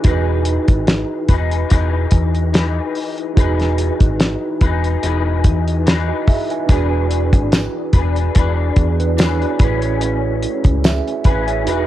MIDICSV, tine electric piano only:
0, 0, Header, 1, 2, 480
1, 0, Start_track
1, 0, Key_signature, 4, "major"
1, 0, Tempo, 831025
1, 27, Time_signature, 4, 2, 24, 8
1, 6856, End_track
2, 0, Start_track
2, 0, Title_t, "Tine electric piano"
2, 0, Program_c, 0, 4
2, 0, Control_c, 0, 64, 127
2, 13, Note_on_c, 0, 63, 63
2, 23, Note_on_c, 0, 66, 58
2, 34, Note_on_c, 0, 68, 57
2, 36, Control_c, 0, 64, 0
2, 41, Note_on_c, 0, 71, 73
2, 128, Control_c, 0, 64, 127
2, 1917, Note_off_c, 0, 63, 0
2, 1922, Note_off_c, 0, 66, 0
2, 1927, Note_off_c, 0, 68, 0
2, 1928, Note_on_c, 0, 63, 69
2, 1931, Note_off_c, 0, 71, 0
2, 1938, Note_on_c, 0, 66, 62
2, 1948, Note_on_c, 0, 68, 67
2, 1954, Note_on_c, 0, 71, 75
2, 3114, Note_off_c, 0, 63, 0
2, 3119, Note_off_c, 0, 66, 0
2, 3124, Note_off_c, 0, 68, 0
2, 3127, Note_off_c, 0, 71, 0
2, 3512, Note_on_c, 0, 75, 58
2, 3515, Note_on_c, 0, 66, 49
2, 3618, Note_off_c, 0, 75, 0
2, 3619, Note_off_c, 0, 66, 0
2, 3628, Note_on_c, 0, 76, 72
2, 3629, Note_on_c, 0, 68, 56
2, 3752, Note_off_c, 0, 76, 0
2, 3753, Note_off_c, 0, 68, 0
2, 3761, Note_on_c, 0, 80, 64
2, 3765, Note_on_c, 0, 71, 47
2, 3850, Note_on_c, 0, 62, 71
2, 3862, Note_on_c, 0, 66, 58
2, 3870, Note_off_c, 0, 71, 0
2, 3872, Note_on_c, 0, 68, 63
2, 3875, Control_c, 0, 64, 0
2, 3877, Note_on_c, 0, 71, 79
2, 3974, Control_c, 0, 64, 127
2, 3988, Note_off_c, 0, 80, 0
2, 5035, Note_off_c, 0, 62, 0
2, 5040, Note_off_c, 0, 66, 0
2, 5046, Note_off_c, 0, 68, 0
2, 5048, Note_off_c, 0, 71, 0
2, 5069, Note_on_c, 0, 68, 61
2, 5071, Note_on_c, 0, 59, 44
2, 5193, Note_off_c, 0, 68, 0
2, 5194, Note_off_c, 0, 59, 0
2, 5199, Note_on_c, 0, 71, 71
2, 5201, Note_on_c, 0, 62, 59
2, 5301, Note_off_c, 0, 71, 0
2, 5302, Note_off_c, 0, 62, 0
2, 5308, Note_on_c, 0, 73, 65
2, 5309, Note_on_c, 0, 64, 57
2, 5432, Note_off_c, 0, 73, 0
2, 5433, Note_off_c, 0, 64, 0
2, 5443, Note_on_c, 0, 74, 64
2, 5445, Note_on_c, 0, 66, 52
2, 5534, Note_on_c, 0, 61, 64
2, 5544, Note_on_c, 0, 64, 57
2, 5553, Control_c, 0, 64, 0
2, 5556, Note_on_c, 0, 68, 61
2, 5565, Note_on_c, 0, 71, 73
2, 5658, Control_c, 0, 64, 127
2, 5668, Note_off_c, 0, 74, 0
2, 5669, Note_off_c, 0, 66, 0
2, 6021, Note_off_c, 0, 68, 0
2, 6025, Note_off_c, 0, 71, 0
2, 6266, Note_on_c, 0, 76, 66
2, 6270, Note_on_c, 0, 68, 50
2, 6494, Note_off_c, 0, 76, 0
2, 6496, Note_off_c, 0, 68, 0
2, 6503, Note_on_c, 0, 80, 66
2, 6509, Note_on_c, 0, 71, 65
2, 6628, Note_on_c, 0, 76, 62
2, 6629, Note_off_c, 0, 80, 0
2, 6632, Note_off_c, 0, 71, 0
2, 6635, Note_on_c, 0, 68, 56
2, 6716, Note_off_c, 0, 61, 0
2, 6721, Note_off_c, 0, 64, 0
2, 6725, Note_on_c, 0, 63, 67
2, 6735, Note_on_c, 0, 66, 61
2, 6739, Note_off_c, 0, 68, 0
2, 6746, Note_on_c, 0, 68, 62
2, 6752, Control_c, 0, 64, 0
2, 6754, Note_on_c, 0, 71, 74
2, 6856, Note_off_c, 0, 63, 0
2, 6856, Note_off_c, 0, 66, 0
2, 6856, Note_off_c, 0, 68, 0
2, 6856, Note_off_c, 0, 71, 0
2, 6856, Note_off_c, 0, 76, 0
2, 6856, End_track
0, 0, End_of_file